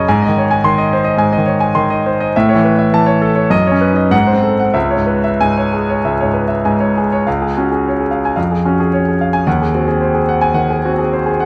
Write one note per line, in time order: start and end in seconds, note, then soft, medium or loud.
0.08 1.16 G#2 medium
0.08 0.29 G#5 medium
0.22 0.43 D#5 medium
0.28 0.56 D#3 medium
0.38 0.50 C#5 medium
0.51 0.72 G#5 medium
0.64 0.93 D#3 medium
0.64 0.86 C6 medium
0.78 1.00 D#5 medium
0.93 1.15 C5 medium
1.04 1.28 D#5 medium
1.18 2.30 G#2 medium
1.18 1.42 G#5 medium
1.33 1.56 D#5 medium
1.38 1.69 D#3 soft
1.46 1.62 C#5 medium
1.60 1.85 G#5 medium
1.75 2.07 D#3 medium
1.75 1.99 C6 medium
1.90 2.14 D#5 medium
2.06 2.29 C5 medium
2.20 2.35 D#5 medium
2.36 3.49 A2 medium
2.36 2.58 E5 medium
2.49 2.72 C#5 medium
2.55 2.85 E3 medium
2.64 2.78 B4 medium
2.79 3.01 E5 medium
2.93 3.24 E3 medium
2.93 3.16 A5 medium
3.06 3.30 C#5 medium
3.22 3.46 A4 medium
3.36 3.51 C#5 medium
3.50 4.10 F#2 medium
3.50 3.75 D#5 medium
3.67 3.91 C#5 medium
3.71 4.04 C#4 medium
3.81 3.97 B4 medium
3.93 4.11 D#4 medium
3.93 4.12 D#5 medium
4.11 4.72 G#2 medium
4.11 4.37 F#5 medium
4.27 4.52 C5 medium
4.33 4.66 C4 medium
4.43 4.59 A4 soft
4.59 4.75 F#5 medium
4.74 5.98 C#2 medium
4.74 5.00 E5 medium
4.91 5.16 C#5 medium
4.97 5.31 G#2 soft
5.07 5.23 B4 soft
5.24 5.49 E5 medium
5.41 5.74 G#2 soft
5.41 5.65 G#5 medium
5.57 5.81 C#5 soft
5.73 5.97 G#4 medium
5.89 6.13 C#5 medium
6.04 7.24 C#2 medium
6.04 6.28 E5 soft
6.21 6.56 G#2 soft
6.21 6.44 C#5 medium
6.34 6.49 B4 soft
6.48 6.73 E5 soft
6.65 6.99 G#2 medium
6.65 6.90 G#5 medium
6.80 7.06 C#5 soft
6.98 7.22 G#4 soft
7.12 7.27 C#5 medium
7.27 8.34 C#2 medium
7.27 7.50 F5 medium
7.42 7.64 G#4 soft
7.57 8.01 C#4 soft
7.57 7.70 F#4 soft
7.72 7.93 G#4 soft
7.88 8.08 C#5 soft
8.00 8.20 G#4 soft
8.11 8.32 F5 soft
8.25 8.38 G#5 medium
8.36 9.43 F2 medium
8.36 8.58 F5 soft
8.51 8.73 G#4 soft
8.65 9.08 C#4 soft
8.65 8.79 F#4 soft
8.80 9.01 G#4 soft
8.93 9.14 C#5 medium
9.09 9.29 G#4 soft
9.21 9.42 F5 medium
9.33 9.47 G#5 medium
9.47 10.53 D#2 medium
9.47 9.68 F#5 medium
9.62 9.82 G#4 soft
9.75 10.17 C4 soft
9.75 9.87 F#4 soft
9.88 10.09 G#4 soft
10.01 10.22 C5 soft
10.15 10.36 G#4 soft
10.29 10.50 F#5 medium
10.41 10.64 G#5 medium
10.54 11.00 D#3 soft
10.54 10.77 F#5 medium
10.70 10.92 G#4 soft
10.85 11.29 C4 soft
10.85 10.99 F#4 soft
10.98 11.20 G#4 soft
11.13 11.34 C5 medium
11.26 11.46 G#4 medium
11.40 11.46 F#5 medium